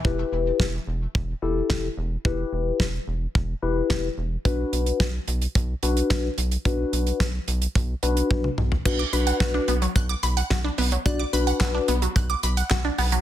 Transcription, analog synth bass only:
X:1
M:4/4
L:1/8
Q:1/4=109
K:Em
V:1 name="Analog synth bass" clef=bass
E,,, E,,, E,,, E,,, E,,, E,,, E,,, E,,, | E,,, E,,, E,,, E,,, E,,, E,,, E,,, E,,, | B,,, B,,, B,,, B,,, B,,, B,,, B,,, B,,, | B,,, B,,, B,,, B,,, B,,, B,,, B,,, B,,, |
B,,, B,,, B,,, B,,, B,,, B,,, B,,, B,,, | B,,, B,,, B,,, B,,, B,,, B,,, B,,, B,,, |]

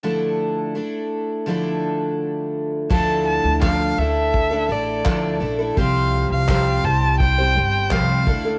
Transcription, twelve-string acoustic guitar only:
X:1
M:4/4
L:1/16
Q:1/4=84
K:Dm
V:1 name="Twelve-string acoustic guitar"
[D,F,A,DEA]4 [A,DEA]4 [D,F,A,DEA]8 | [D,F,A,DEA]4 [D,F,A,DA]2 [A,DEA]3 [A,DEA] [A,DEA]2 [D,F,A,DEA]2 [A,DEA] [A,DEA] | [C,F,G,CGc]4 [C,F,G,CGc]2 [G,CGc]2 [G,CGc] [G,CGc] [G,CGc]2 [C,F,G,CGc]2 [A,DEA] [A,DEA] |]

